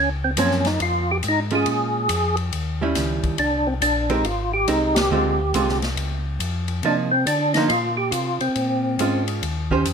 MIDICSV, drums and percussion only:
0, 0, Header, 1, 2, 480
1, 0, Start_track
1, 0, Tempo, 431034
1, 1863, Time_signature, 4, 2, 24, 8
1, 11061, End_track
2, 0, Start_track
2, 0, Title_t, "Drums"
2, 410, Note_on_c, 9, 44, 60
2, 410, Note_on_c, 9, 51, 68
2, 522, Note_off_c, 9, 44, 0
2, 522, Note_off_c, 9, 51, 0
2, 570, Note_on_c, 9, 38, 24
2, 682, Note_off_c, 9, 38, 0
2, 720, Note_on_c, 9, 51, 41
2, 730, Note_on_c, 9, 38, 36
2, 831, Note_off_c, 9, 51, 0
2, 842, Note_off_c, 9, 38, 0
2, 890, Note_on_c, 9, 51, 49
2, 1002, Note_off_c, 9, 51, 0
2, 1366, Note_on_c, 9, 44, 45
2, 1366, Note_on_c, 9, 51, 56
2, 1478, Note_off_c, 9, 44, 0
2, 1478, Note_off_c, 9, 51, 0
2, 1676, Note_on_c, 9, 51, 38
2, 1787, Note_off_c, 9, 51, 0
2, 1847, Note_on_c, 9, 51, 50
2, 1958, Note_off_c, 9, 51, 0
2, 2328, Note_on_c, 9, 44, 51
2, 2328, Note_on_c, 9, 51, 72
2, 2439, Note_off_c, 9, 44, 0
2, 2439, Note_off_c, 9, 51, 0
2, 2638, Note_on_c, 9, 51, 37
2, 2749, Note_off_c, 9, 51, 0
2, 2812, Note_on_c, 9, 51, 51
2, 2923, Note_off_c, 9, 51, 0
2, 3288, Note_on_c, 9, 44, 57
2, 3288, Note_on_c, 9, 51, 52
2, 3291, Note_on_c, 9, 38, 35
2, 3399, Note_off_c, 9, 44, 0
2, 3399, Note_off_c, 9, 51, 0
2, 3403, Note_off_c, 9, 38, 0
2, 3602, Note_on_c, 9, 51, 39
2, 3604, Note_on_c, 9, 36, 44
2, 3714, Note_off_c, 9, 51, 0
2, 3715, Note_off_c, 9, 36, 0
2, 3765, Note_on_c, 9, 51, 51
2, 3876, Note_off_c, 9, 51, 0
2, 4250, Note_on_c, 9, 44, 52
2, 4250, Note_on_c, 9, 51, 58
2, 4361, Note_off_c, 9, 44, 0
2, 4361, Note_off_c, 9, 51, 0
2, 4561, Note_on_c, 9, 51, 39
2, 4673, Note_off_c, 9, 51, 0
2, 4728, Note_on_c, 9, 51, 48
2, 4839, Note_off_c, 9, 51, 0
2, 5207, Note_on_c, 9, 44, 40
2, 5207, Note_on_c, 9, 51, 54
2, 5319, Note_off_c, 9, 44, 0
2, 5319, Note_off_c, 9, 51, 0
2, 5524, Note_on_c, 9, 51, 59
2, 5528, Note_on_c, 9, 38, 72
2, 5636, Note_off_c, 9, 51, 0
2, 5639, Note_off_c, 9, 38, 0
2, 6170, Note_on_c, 9, 44, 53
2, 6170, Note_on_c, 9, 51, 62
2, 6281, Note_off_c, 9, 44, 0
2, 6281, Note_off_c, 9, 51, 0
2, 6335, Note_on_c, 9, 38, 26
2, 6446, Note_off_c, 9, 38, 0
2, 6484, Note_on_c, 9, 51, 39
2, 6493, Note_on_c, 9, 38, 41
2, 6595, Note_off_c, 9, 51, 0
2, 6604, Note_off_c, 9, 38, 0
2, 6651, Note_on_c, 9, 51, 52
2, 6762, Note_off_c, 9, 51, 0
2, 7129, Note_on_c, 9, 44, 46
2, 7129, Note_on_c, 9, 51, 57
2, 7240, Note_off_c, 9, 44, 0
2, 7240, Note_off_c, 9, 51, 0
2, 7437, Note_on_c, 9, 51, 41
2, 7548, Note_off_c, 9, 51, 0
2, 7605, Note_on_c, 9, 51, 45
2, 7717, Note_off_c, 9, 51, 0
2, 8092, Note_on_c, 9, 44, 59
2, 8092, Note_on_c, 9, 51, 63
2, 8203, Note_off_c, 9, 44, 0
2, 8203, Note_off_c, 9, 51, 0
2, 8399, Note_on_c, 9, 51, 43
2, 8402, Note_on_c, 9, 38, 47
2, 8510, Note_off_c, 9, 51, 0
2, 8513, Note_off_c, 9, 38, 0
2, 8570, Note_on_c, 9, 51, 53
2, 8682, Note_off_c, 9, 51, 0
2, 9043, Note_on_c, 9, 44, 55
2, 9043, Note_on_c, 9, 51, 60
2, 9154, Note_off_c, 9, 44, 0
2, 9154, Note_off_c, 9, 51, 0
2, 9360, Note_on_c, 9, 51, 39
2, 9471, Note_off_c, 9, 51, 0
2, 9527, Note_on_c, 9, 51, 49
2, 9638, Note_off_c, 9, 51, 0
2, 10011, Note_on_c, 9, 44, 47
2, 10011, Note_on_c, 9, 51, 61
2, 10123, Note_off_c, 9, 44, 0
2, 10123, Note_off_c, 9, 51, 0
2, 10330, Note_on_c, 9, 51, 44
2, 10441, Note_off_c, 9, 51, 0
2, 10498, Note_on_c, 9, 51, 52
2, 10609, Note_off_c, 9, 51, 0
2, 10810, Note_on_c, 9, 36, 39
2, 10921, Note_off_c, 9, 36, 0
2, 10974, Note_on_c, 9, 44, 49
2, 10974, Note_on_c, 9, 51, 55
2, 11061, Note_off_c, 9, 44, 0
2, 11061, Note_off_c, 9, 51, 0
2, 11061, End_track
0, 0, End_of_file